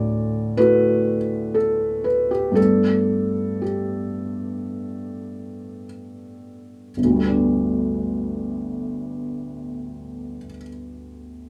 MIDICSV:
0, 0, Header, 1, 2, 480
1, 0, Start_track
1, 0, Key_signature, 1, "major"
1, 0, Tempo, 947867
1, 783, Tempo, 1039861
1, 1253, Time_signature, 4, 2, 24, 8
1, 1743, Tempo, 1086957
1, 2223, Tempo, 1119403
1, 5130, End_track
2, 0, Start_track
2, 0, Title_t, "Felt piano"
2, 0, Program_c, 0, 0
2, 0, Control_c, 0, 64, 127
2, 0, Note_on_c, 0, 38, 53
2, 0, Note_on_c, 0, 45, 43
2, 0, Note_on_c, 0, 74, 88
2, 291, Note_on_c, 0, 71, 98
2, 293, Note_on_c, 0, 57, 45
2, 295, Note_off_c, 0, 74, 0
2, 297, Note_on_c, 0, 64, 44
2, 300, Note_on_c, 0, 66, 47
2, 585, Note_off_c, 0, 45, 0
2, 782, Note_off_c, 0, 71, 0
2, 782, Note_on_c, 0, 69, 66
2, 1012, Note_on_c, 0, 71, 69
2, 1013, Note_off_c, 0, 69, 0
2, 1131, Note_off_c, 0, 71, 0
2, 1135, Note_on_c, 0, 67, 59
2, 1230, Note_off_c, 0, 57, 0
2, 1231, Note_on_c, 0, 43, 44
2, 1236, Note_off_c, 0, 38, 0
2, 1236, Note_off_c, 0, 64, 0
2, 1237, Note_off_c, 0, 66, 0
2, 1237, Note_on_c, 0, 57, 33
2, 1241, Note_on_c, 0, 59, 32
2, 1247, Note_on_c, 0, 62, 31
2, 1248, Note_on_c, 0, 69, 72
2, 1254, Note_off_c, 0, 67, 0
2, 1262, Control_c, 0, 64, 0
2, 1368, Control_c, 0, 64, 127
2, 1739, Note_on_c, 0, 67, 46
2, 1742, Note_off_c, 0, 69, 0
2, 2702, Note_off_c, 0, 67, 0
2, 3164, Note_off_c, 0, 43, 0
2, 3167, Note_off_c, 0, 57, 0
2, 3169, Note_off_c, 0, 59, 0
2, 3172, Note_off_c, 0, 62, 0
2, 3191, Note_on_c, 0, 31, 38
2, 3202, Control_c, 0, 64, 0
2, 3220, Note_on_c, 0, 38, 36
2, 3247, Note_on_c, 0, 55, 36
2, 3274, Note_on_c, 0, 57, 35
2, 3281, Control_c, 0, 64, 127
2, 3301, Note_on_c, 0, 59, 33
2, 3328, Note_on_c, 0, 62, 35
2, 4647, Note_off_c, 0, 31, 0
2, 4676, Note_off_c, 0, 38, 0
2, 4702, Note_off_c, 0, 55, 0
2, 4729, Note_off_c, 0, 57, 0
2, 4756, Note_off_c, 0, 59, 0
2, 4783, Note_off_c, 0, 62, 0
2, 5130, End_track
0, 0, End_of_file